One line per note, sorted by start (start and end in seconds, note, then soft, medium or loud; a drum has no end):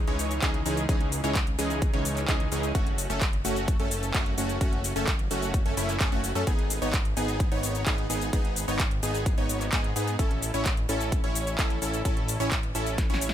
0.07 0.40 C#2 loud
0.07 0.40 E3 medium
0.07 0.40 G#3 medium
0.07 0.40 C#4 medium
0.07 0.40 D#4 medium
0.07 0.40 C#5 medium
0.07 closed hi-hat soft
0.19 open hi-hat loud
0.19 shaker medium
0.31 closed hi-hat soft
0.31 shaker soft
0.42 0.63 C#2 medium
0.42 0.63 E3 medium
0.42 0.63 G#3 medium
0.42 0.63 C#4 medium
0.42 0.63 D#4 medium
0.42 0.63 G#4 loud
0.42 kick loud
0.42 clap loud
0.42 closed hi-hat loud
0.42 shaker soft
0.54 closed hi-hat soft
0.66 0.87 C#2 medium
0.66 0.86 E3 medium
0.66 0.86 G#3 medium
0.66 0.86 C#4 medium
0.66 0.86 D#4 medium
0.66 0.86 G#4 medium
0.66 open hi-hat loud
0.66 shaker medium
0.77 closed hi-hat soft
0.77 shaker soft
0.89 1.21 C#2 medium
0.89 1.21 E3 medium
0.89 1.21 G#3 medium
0.89 1.21 C#4 medium
0.89 1.21 D#4 medium
0.89 1.21 G#4 loud
0.89 kick loud
0.89 closed hi-hat loud
0.89 shaker soft
1.01 closed hi-hat soft
1.12 open hi-hat loud
1.12 shaker medium
1.24 1.56 C#2 loud
1.24 1.37 E3 medium
1.24 1.37 G#3 medium
1.24 1.37 C#4 medium
1.24 1.37 D#4 medium
1.24 1.37 C#5 medium
1.24 closed hi-hat soft
1.24 shaker soft
1.35 kick loud
1.35 clap loud
1.35 closed hi-hat medium
1.35 shaker soft
1.47 closed hi-hat soft
1.59 1.91 C#2 loud
1.59 1.91 E3 medium
1.59 1.91 G#3 medium
1.59 1.91 C#4 medium
1.59 1.91 D#4 medium
1.59 1.91 G#4 loud
1.59 open hi-hat loud
1.59 shaker medium
1.70 closed hi-hat soft
1.70 shaker soft
1.82 kick loud
1.82 closed hi-hat medium
1.82 shaker soft
1.94 2.26 C#2 loud
1.94 2.26 E3 medium
1.94 2.26 G#3 medium
1.94 2.26 C#4 medium
1.94 2.26 D#4 medium
1.94 2.26 C#5 loud
1.94 closed hi-hat soft
2.05 open hi-hat loud
2.05 shaker medium
2.17 clap soft
2.17 closed hi-hat soft
2.17 shaker soft
2.28 2.49 C#2 loud
2.28 2.49 E3 medium
2.28 2.49 G#3 medium
2.28 2.49 C#4 medium
2.28 2.49 D#4 medium
2.28 2.49 G#4 loud
2.28 kick loud
2.28 clap loud
2.28 closed hi-hat medium
2.28 shaker soft
2.40 closed hi-hat soft
2.52 2.73 C#2 medium
2.52 2.72 E3 medium
2.52 2.72 G#3 medium
2.52 2.72 C#4 medium
2.52 2.72 D#4 medium
2.52 2.72 G#4 medium
2.52 open hi-hat medium
2.52 shaker medium
2.63 closed hi-hat soft
2.63 shaker soft
2.75 3.08 F#1 loud
2.75 3.07 A3 medium
2.75 3.07 C#4 medium
2.75 3.07 F#4 loud
2.75 kick loud
2.75 closed hi-hat medium
2.75 shaker soft
2.87 closed hi-hat soft
2.98 open hi-hat loud
2.98 shaker medium
3.10 3.42 F#1 loud
3.10 3.23 A3 medium
3.10 3.24 C#4 medium
3.10 3.23 A4 medium
3.10 closed hi-hat soft
3.10 shaker soft
3.21 kick loud
3.21 clap loud
3.21 closed hi-hat medium
3.21 shaker soft
3.33 closed hi-hat soft
3.45 3.77 F#1 loud
3.45 3.77 A3 medium
3.45 3.77 C#4 medium
3.45 3.77 F#4 loud
3.45 open hi-hat loud
3.45 shaker medium
3.56 closed hi-hat soft
3.56 shaker soft
3.68 kick loud
3.68 closed hi-hat medium
3.68 shaker soft
3.80 4.12 F#1 loud
3.80 4.12 A3 medium
3.80 4.12 C#4 medium
3.80 4.12 A4 loud
3.80 closed hi-hat soft
3.91 open hi-hat loud
3.91 shaker medium
4.03 closed hi-hat soft
4.03 shaker soft
4.14 4.35 F#1 loud
4.14 4.35 A3 medium
4.14 4.35 C#4 medium
4.14 4.35 F#4 loud
4.14 kick loud
4.14 clap loud
4.14 closed hi-hat medium
4.14 shaker soft
4.26 closed hi-hat soft
4.38 4.59 F#1 medium
4.38 4.58 A3 medium
4.38 4.58 C#4 medium
4.38 4.58 F#4 medium
4.38 open hi-hat loud
4.38 shaker medium
4.49 closed hi-hat soft
4.49 shaker soft
4.61 4.94 F#1 loud
4.61 4.93 A3 medium
4.61 4.93 C#4 medium
4.61 4.93 F#4 loud
4.61 kick loud
4.61 closed hi-hat medium
4.61 shaker soft
4.73 closed hi-hat soft
4.84 open hi-hat loud
4.84 shaker medium
4.96 5.28 F#1 loud
4.96 5.10 A3 medium
4.96 5.10 C#4 medium
4.96 5.10 A4 medium
4.96 closed hi-hat soft
4.96 shaker soft
5.07 kick loud
5.07 clap loud
5.07 closed hi-hat medium
5.07 shaker soft
5.19 closed hi-hat soft
5.31 5.63 F#1 loud
5.31 5.63 A3 medium
5.31 5.63 C#4 medium
5.31 5.63 F#4 loud
5.31 open hi-hat loud
5.31 shaker medium
5.42 closed hi-hat soft
5.42 shaker soft
5.54 kick loud
5.54 closed hi-hat medium
5.54 shaker soft
5.66 5.75 F#1 loud
5.66 5.75 A3 medium
5.66 5.75 C#4 medium
5.66 5.75 A4 loud
5.66 closed hi-hat soft
5.77 5.98 F#1 loud
5.77 5.98 A3 loud
5.77 5.98 C#4 medium
5.77 5.98 E4 loud
5.77 open hi-hat loud
5.77 shaker medium
5.89 clap soft
5.89 closed hi-hat soft
5.89 shaker soft
6.00 6.10 F#1 loud
6.00 6.09 A3 medium
6.00 6.09 C#4 medium
6.00 6.09 G#4 loud
6.00 kick loud
6.00 clap loud
6.00 closed hi-hat medium
6.00 shaker soft
6.12 6.33 F#1 medium
6.12 6.32 A3 medium
6.12 6.32 C#4 medium
6.12 6.32 F#4 loud
6.12 closed hi-hat soft
6.24 open hi-hat loud
6.24 shaker medium
6.35 6.45 F#2 loud
6.35 6.44 A3 medium
6.35 6.44 C#4 medium
6.35 6.44 A4 medium
6.35 closed hi-hat soft
6.35 shaker soft
6.47 6.80 G#1 medium
6.47 6.79 B3 medium
6.47 6.79 D#4 medium
6.47 6.79 G#4 loud
6.47 kick loud
6.47 closed hi-hat medium
6.47 shaker soft
6.59 closed hi-hat soft
6.70 open hi-hat loud
6.70 shaker medium
6.82 7.14 G#1 loud
6.82 6.96 B3 medium
6.82 6.96 D#4 medium
6.82 6.96 C#5 medium
6.82 closed hi-hat soft
6.82 shaker soft
6.93 kick loud
6.93 clap loud
6.93 closed hi-hat medium
6.93 shaker soft
7.05 closed hi-hat soft
7.17 7.49 G#1 loud
7.17 7.49 B3 medium
7.17 7.49 D#4 medium
7.17 7.49 G#4 loud
7.17 open hi-hat loud
7.17 shaker medium
7.28 closed hi-hat soft
7.28 shaker soft
7.40 kick loud
7.40 closed hi-hat medium
7.40 shaker soft
7.52 7.84 G#1 loud
7.52 7.84 B3 medium
7.52 7.84 D#4 medium
7.52 7.84 C#5 loud
7.52 closed hi-hat soft
7.63 open hi-hat loud
7.63 shaker medium
7.75 closed hi-hat soft
7.75 shaker soft
7.86 8.07 G#1 loud
7.86 8.07 B3 medium
7.86 8.07 D#4 medium
7.86 8.07 G#4 medium
7.86 kick loud
7.86 clap loud
7.86 closed hi-hat medium
7.86 shaker soft
7.98 closed hi-hat soft
8.10 8.31 G#1 medium
8.10 8.30 B3 medium
8.10 8.30 D#4 medium
8.10 8.30 G#4 medium
8.10 open hi-hat loud
8.10 shaker medium
8.21 closed hi-hat soft
8.21 shaker soft
8.33 8.66 G#1 loud
8.33 8.65 B3 medium
8.33 8.65 D#4 medium
8.33 8.65 G#4 loud
8.33 kick loud
8.33 closed hi-hat loud
8.33 shaker soft
8.45 closed hi-hat soft
8.56 open hi-hat loud
8.56 shaker medium
8.68 9.01 G#1 loud
8.68 8.82 B3 medium
8.68 8.82 D#4 medium
8.68 8.82 C#5 medium
8.68 closed hi-hat soft
8.68 shaker soft
8.79 kick loud
8.79 clap loud
8.79 closed hi-hat medium
8.79 shaker soft
8.91 closed hi-hat soft
9.03 9.35 G#1 loud
9.03 9.35 B3 medium
9.03 9.35 D#4 medium
9.03 9.35 G#4 loud
9.03 open hi-hat medium
9.03 shaker medium
9.14 closed hi-hat soft
9.14 shaker soft
9.26 kick loud
9.26 closed hi-hat medium
9.26 shaker soft
9.38 9.70 G#1 loud
9.38 9.70 B3 medium
9.38 9.70 D#4 medium
9.38 9.70 C#5 loud
9.38 closed hi-hat soft
9.49 open hi-hat loud
9.49 shaker medium
9.61 clap soft
9.61 closed hi-hat soft
9.61 shaker soft
9.72 9.94 G#2 loud
9.72 9.93 B3 medium
9.72 9.93 D#4 medium
9.72 9.93 G#4 loud
9.72 kick loud
9.72 clap loud
9.72 closed hi-hat loud
9.72 shaker soft
9.84 closed hi-hat soft
9.96 10.17 G#2 loud
9.96 10.16 B3 medium
9.96 10.16 D#4 medium
9.96 10.16 G#4 medium
9.96 open hi-hat medium
9.96 shaker medium
10.08 closed hi-hat soft
10.08 shaker soft
10.19 10.52 A1 loud
10.19 10.51 C#4 medium
10.19 10.51 E4 medium
10.19 10.51 A4 loud
10.19 kick loud
10.19 closed hi-hat loud
10.19 shaker soft
10.31 closed hi-hat soft
10.42 open hi-hat loud
10.42 shaker medium
10.54 10.87 A1 loud
10.54 10.68 C#4 medium
10.54 10.68 E4 medium
10.54 10.68 C#5 medium
10.54 closed hi-hat soft
10.54 shaker soft
10.65 kick loud
10.65 clap loud
10.65 closed hi-hat loud
10.65 shaker soft
10.77 closed hi-hat soft
10.89 11.21 A1 loud
10.89 11.21 C#4 medium
10.89 11.21 E4 medium
10.89 11.21 A4 loud
10.89 open hi-hat medium
10.89 shaker medium
11.01 closed hi-hat soft
11.01 shaker soft
11.12 kick loud
11.12 closed hi-hat medium
11.12 shaker soft
11.24 11.56 A1 loud
11.24 11.56 C#4 medium
11.24 11.56 E4 medium
11.24 11.56 C#5 loud
11.24 closed hi-hat soft
11.35 open hi-hat loud
11.35 shaker medium
11.47 closed hi-hat soft
11.47 shaker soft
11.58 11.80 A1 loud
11.58 11.79 C#4 medium
11.58 11.79 E4 medium
11.58 11.79 A4 loud
11.58 kick loud
11.58 clap loud
11.58 closed hi-hat loud
11.58 shaker soft
11.70 closed hi-hat soft
11.82 12.03 A1 loud
11.82 12.02 C#4 medium
11.82 12.02 E4 medium
11.82 12.02 A4 medium
11.82 open hi-hat medium
11.82 shaker medium
11.94 closed hi-hat soft
11.94 shaker soft
12.05 12.38 A1 loud
12.05 12.37 C#4 medium
12.05 12.37 E4 medium
12.05 12.37 A4 loud
12.05 kick loud
12.05 closed hi-hat loud
12.05 shaker soft
12.17 closed hi-hat soft
12.28 open hi-hat loud
12.28 shaker medium
12.40 12.73 A1 loud
12.40 12.54 C#4 medium
12.40 12.54 E4 medium
12.40 12.54 C#5 medium
12.40 closed hi-hat soft
12.40 shaker soft
12.51 kick loud
12.51 clap loud
12.51 closed hi-hat loud
12.51 shaker soft
12.63 closed hi-hat soft
12.75 13.07 A1 medium
12.75 13.07 C#4 medium
12.75 13.07 E4 medium
12.75 13.07 A4 loud
12.75 open hi-hat medium
12.75 shaker medium
12.87 closed hi-hat soft
12.87 shaker soft
12.98 kick loud
12.98 snare medium
12.98 closed hi-hat loud
12.98 shaker soft
13.10 13.34 A1 loud
13.10 13.34 C#4 medium
13.10 13.34 E4 medium
13.10 13.34 C#5 loud
13.10 snare medium
13.10 closed hi-hat soft
13.21 open hi-hat loud
13.21 shaker medium
13.29 snare medium